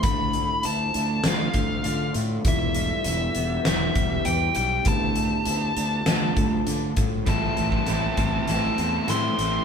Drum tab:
HH |x-x-x-x-x-x-x-x-|x-x-x-x-x-x-x-x-|x-x-x-x-x-x-x-x-|x-x-x-x-x-x-x-x-|
SD |--------o-------|--------o-------|--------o-------|o---o---o---o---|
BD |o---------o-----|o---------o-----|o---------o---o-|o--o--o---------|